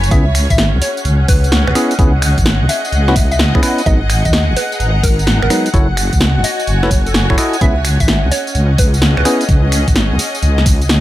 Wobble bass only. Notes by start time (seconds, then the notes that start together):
0.11 C#2
0.50 G#1
0.74 C#2
1.05 C#2
1.28 C#2
1.68 C#2
1.99 C#2
2.38 G#1
2.61 C#2
2.92 C#2
3.16 C#2
3.55 C#2
3.86 G#1
4.25 D#2
4.49 G#1
4.80 G#1
5.03 G#1
5.42 G#1
5.74 F#1
6.13 C#2
6.36 F#1
6.67 F#1
6.91 F#1
7.30 F#1
7.61 C#2
8.00 G#1
8.24 C#2
8.55 C#2
8.78 C#2
9.17 C#2
9.49 C#2
9.88 G#1
10.11 C#2
10.43 C#2
10.66 C#2